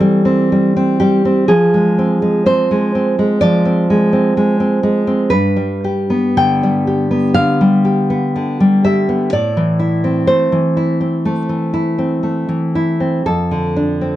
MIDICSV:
0, 0, Header, 1, 2, 480
1, 0, Start_track
1, 0, Tempo, 986842
1, 732, Time_signature, 4, 2, 24, 8
1, 1201, Tempo, 947867
1, 2641, Tempo, 1052632
1, 3121, Tempo, 975610
1, 6001, Tempo, 1018676
1, 6916, End_track
2, 0, Start_track
2, 0, Title_t, "Nylon-string guitar"
2, 0, Program_c, 0, 24
2, 0, Note_on_c, 0, 52, 67
2, 0, Note_on_c, 0, 60, 50
2, 0, Note_on_c, 0, 69, 108
2, 2, Note_on_c, 0, 55, 60
2, 116, Note_off_c, 0, 60, 0
2, 122, Note_on_c, 0, 60, 56
2, 248, Note_off_c, 0, 55, 0
2, 253, Note_on_c, 0, 55, 55
2, 367, Note_off_c, 0, 60, 0
2, 372, Note_on_c, 0, 60, 60
2, 473, Note_off_c, 0, 69, 0
2, 484, Note_off_c, 0, 55, 0
2, 485, Note_on_c, 0, 67, 92
2, 490, Note_on_c, 0, 55, 63
2, 603, Note_off_c, 0, 60, 0
2, 609, Note_on_c, 0, 60, 53
2, 713, Note_off_c, 0, 52, 0
2, 718, Note_off_c, 0, 67, 0
2, 720, Note_on_c, 0, 68, 89
2, 723, Note_on_c, 0, 53, 68
2, 730, Note_off_c, 0, 60, 0
2, 731, Note_off_c, 0, 55, 0
2, 845, Note_on_c, 0, 56, 64
2, 966, Note_on_c, 0, 60, 64
2, 1075, Note_off_c, 0, 56, 0
2, 1080, Note_on_c, 0, 56, 54
2, 1177, Note_off_c, 0, 68, 0
2, 1191, Note_off_c, 0, 60, 0
2, 1196, Note_on_c, 0, 60, 62
2, 1198, Note_on_c, 0, 72, 100
2, 1317, Note_off_c, 0, 56, 0
2, 1323, Note_on_c, 0, 56, 56
2, 1439, Note_off_c, 0, 60, 0
2, 1445, Note_on_c, 0, 60, 58
2, 1559, Note_off_c, 0, 56, 0
2, 1565, Note_on_c, 0, 56, 57
2, 1661, Note_off_c, 0, 53, 0
2, 1664, Note_off_c, 0, 72, 0
2, 1677, Note_on_c, 0, 74, 98
2, 1682, Note_on_c, 0, 53, 67
2, 1795, Note_off_c, 0, 60, 0
2, 1801, Note_on_c, 0, 60, 56
2, 1920, Note_off_c, 0, 56, 0
2, 1926, Note_on_c, 0, 56, 61
2, 2035, Note_off_c, 0, 60, 0
2, 2041, Note_on_c, 0, 60, 54
2, 2158, Note_off_c, 0, 56, 0
2, 2164, Note_on_c, 0, 56, 57
2, 2274, Note_off_c, 0, 60, 0
2, 2280, Note_on_c, 0, 60, 59
2, 2372, Note_off_c, 0, 74, 0
2, 2392, Note_off_c, 0, 56, 0
2, 2398, Note_on_c, 0, 56, 57
2, 2514, Note_off_c, 0, 60, 0
2, 2520, Note_on_c, 0, 60, 56
2, 2620, Note_off_c, 0, 53, 0
2, 2634, Note_on_c, 0, 71, 87
2, 2640, Note_on_c, 0, 43, 73
2, 2642, Note_off_c, 0, 56, 0
2, 2642, Note_off_c, 0, 60, 0
2, 2755, Note_on_c, 0, 55, 57
2, 2883, Note_on_c, 0, 67, 58
2, 3000, Note_on_c, 0, 59, 55
2, 3101, Note_off_c, 0, 71, 0
2, 3123, Note_on_c, 0, 50, 60
2, 3124, Note_on_c, 0, 79, 104
2, 3247, Note_off_c, 0, 55, 0
2, 3253, Note_on_c, 0, 55, 59
2, 3365, Note_off_c, 0, 67, 0
2, 3370, Note_on_c, 0, 67, 58
2, 3481, Note_off_c, 0, 59, 0
2, 3486, Note_on_c, 0, 59, 53
2, 3589, Note_off_c, 0, 43, 0
2, 3591, Note_off_c, 0, 79, 0
2, 3601, Note_off_c, 0, 50, 0
2, 3603, Note_on_c, 0, 77, 112
2, 3607, Note_on_c, 0, 50, 63
2, 3726, Note_off_c, 0, 55, 0
2, 3732, Note_on_c, 0, 55, 59
2, 3845, Note_off_c, 0, 67, 0
2, 3850, Note_on_c, 0, 67, 65
2, 3969, Note_off_c, 0, 59, 0
2, 3974, Note_on_c, 0, 59, 57
2, 4095, Note_off_c, 0, 50, 0
2, 4100, Note_on_c, 0, 50, 57
2, 4216, Note_off_c, 0, 55, 0
2, 4222, Note_on_c, 0, 55, 60
2, 4312, Note_off_c, 0, 77, 0
2, 4336, Note_off_c, 0, 67, 0
2, 4341, Note_on_c, 0, 76, 93
2, 4342, Note_on_c, 0, 67, 57
2, 4455, Note_off_c, 0, 59, 0
2, 4460, Note_on_c, 0, 59, 56
2, 4566, Note_off_c, 0, 76, 0
2, 4576, Note_off_c, 0, 59, 0
2, 4577, Note_off_c, 0, 67, 0
2, 4578, Note_off_c, 0, 50, 0
2, 4578, Note_off_c, 0, 55, 0
2, 4579, Note_on_c, 0, 74, 92
2, 4582, Note_on_c, 0, 45, 61
2, 4697, Note_on_c, 0, 52, 58
2, 4808, Note_on_c, 0, 64, 60
2, 4929, Note_on_c, 0, 60, 50
2, 5027, Note_off_c, 0, 74, 0
2, 5044, Note_on_c, 0, 72, 98
2, 5049, Note_off_c, 0, 45, 0
2, 5051, Note_on_c, 0, 57, 52
2, 5160, Note_off_c, 0, 52, 0
2, 5166, Note_on_c, 0, 52, 51
2, 5281, Note_off_c, 0, 64, 0
2, 5287, Note_on_c, 0, 64, 54
2, 5398, Note_off_c, 0, 60, 0
2, 5404, Note_on_c, 0, 60, 47
2, 5520, Note_off_c, 0, 57, 0
2, 5526, Note_on_c, 0, 57, 55
2, 5638, Note_off_c, 0, 52, 0
2, 5644, Note_on_c, 0, 52, 46
2, 5757, Note_off_c, 0, 64, 0
2, 5763, Note_on_c, 0, 64, 58
2, 5880, Note_off_c, 0, 60, 0
2, 5885, Note_on_c, 0, 60, 51
2, 6000, Note_off_c, 0, 57, 0
2, 6006, Note_on_c, 0, 57, 47
2, 6121, Note_off_c, 0, 52, 0
2, 6127, Note_on_c, 0, 52, 52
2, 6247, Note_off_c, 0, 64, 0
2, 6253, Note_on_c, 0, 64, 55
2, 6365, Note_off_c, 0, 60, 0
2, 6370, Note_on_c, 0, 60, 45
2, 6469, Note_off_c, 0, 72, 0
2, 6488, Note_off_c, 0, 57, 0
2, 6489, Note_off_c, 0, 52, 0
2, 6489, Note_off_c, 0, 64, 0
2, 6490, Note_off_c, 0, 60, 0
2, 6491, Note_on_c, 0, 41, 58
2, 6491, Note_on_c, 0, 69, 72
2, 6611, Note_on_c, 0, 50, 49
2, 6729, Note_on_c, 0, 62, 52
2, 6846, Note_on_c, 0, 60, 45
2, 6916, Note_off_c, 0, 41, 0
2, 6916, Note_off_c, 0, 50, 0
2, 6916, Note_off_c, 0, 60, 0
2, 6916, Note_off_c, 0, 62, 0
2, 6916, Note_off_c, 0, 69, 0
2, 6916, End_track
0, 0, End_of_file